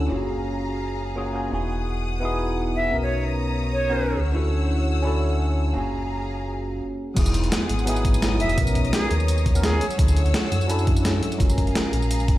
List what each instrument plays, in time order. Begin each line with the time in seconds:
Already playing: tine electric piano C#4 D4 E4 F#4 A4
0.08 sub bass F#1, tine electric piano A#3 C#4 F4 F#4, string section G#4 F5 A#5
0.13 tine electric piano G#4
1.15 tine electric piano A#3 C#4 F4 F#4 G#4
1.33 tine electric piano A#3 C#4 F4 F#4 G#4
1.50 sub bass E1, tine electric piano B3 D#4 E4 F#4, string section F#5 D#6
1.54 tine electric piano G#4
2.20 tine electric piano B3 D#4 E4 F#4
2.25 tine electric piano G#4
2.76 flute E5
2.91 sub bass B1, tine electric piano B3 C#4 D#4 F#4, string section C#5 A#5 D#6
2.95 tine electric piano A#4
3.03 flute C#5
3.73 flute C#5
3.89 tine electric piano B3 C#4 D#4 F#4 A#4
4.16 sub bass D2, string section F#5 E6
4.32 tine electric piano C#4 D4 E4 F#4
4.36 tine electric piano A4
5.02 tine electric piano C#4 D4 E4 F#4
5.07 tine electric piano A4
5.73 sub bass F#1, tine electric piano A#3 C#4 F4 F#4, string section G#4 F5 A#5
5.78 tine electric piano G#4
7.14 sub bass E1, tine electric piano F#3 B3 D#4 E4, string section G#4 F#5 D#6, kick, closed hi-hat, crash, tambourine
7.19 tine electric piano G#4
7.26 closed hi-hat, tambourine
7.34 closed hi-hat, tambourine
7.44 closed hi-hat
7.52 snare, closed hi-hat, tambourine
7.69 sub bass G#1, closed hi-hat
7.79 tambourine
7.85 tine electric piano F#3 B3 D#4 E4, closed hi-hat, tambourine
7.90 tine electric piano G#4
7.96 tambourine
8.05 kick, closed hi-hat
8.14 closed hi-hat, tambourine
8.22 snare, closed hi-hat, tambourine
8.40 sub bass E1, flute E5, closed hi-hat
8.49 closed hi-hat, tambourine
8.55 sub bass B1, tine electric piano F#3 B3 C#4 D#4, string section C#5 A#5, kick, closed hi-hat, tambourine
8.60 tine electric piano A#4
8.67 closed hi-hat, tambourine
8.75 kick, closed hi-hat, tambourine
8.85 closed hi-hat
8.93 flute G#4, snare, closed hi-hat, tambourine
9.11 sub bass D#2, closed hi-hat
9.20 tambourine
9.28 closed hi-hat, tambourine
9.38 tambourine
9.46 kick, closed hi-hat
9.54 tine electric piano F#3 B3 C#4 D#4 A#4, closed hi-hat, tambourine
9.63 flute G#4, snare, closed hi-hat, tambourine
9.81 string section F#5 E6, closed hi-hat
9.90 closed hi-hat, tambourine
9.96 sub bass D2, tine electric piano F#3 C#4 D4 E4, kick, closed hi-hat, tambourine
10.01 tine electric piano A4
10.08 closed hi-hat, tambourine
10.17 closed hi-hat, tambourine
10.26 closed hi-hat
10.34 snare, closed hi-hat, tambourine
10.52 sub bass F#2, closed hi-hat
10.61 tambourine
10.67 tine electric piano F#3 C#4 D4 E4, closed hi-hat, tambourine
10.72 tine electric piano A4
10.79 tambourine
10.87 kick, closed hi-hat
10.96 closed hi-hat, tambourine
11.05 snare, closed hi-hat, tambourine
11.23 closed hi-hat
11.32 closed hi-hat, tambourine
11.38 sub bass F#1, tine electric piano G#3 C#4 F4 F#4, string section G#4 F5 A#5, kick, closed hi-hat, tambourine
11.42 tine electric piano A#4
11.50 closed hi-hat, tambourine
11.58 kick, closed hi-hat, tambourine
11.67 closed hi-hat
11.75 snare, closed hi-hat, tambourine
11.93 sub bass A#1, closed hi-hat
12.02 tambourine
12.11 closed hi-hat, tambourine
12.20 tambourine
12.28 sub bass F#1, kick, closed hi-hat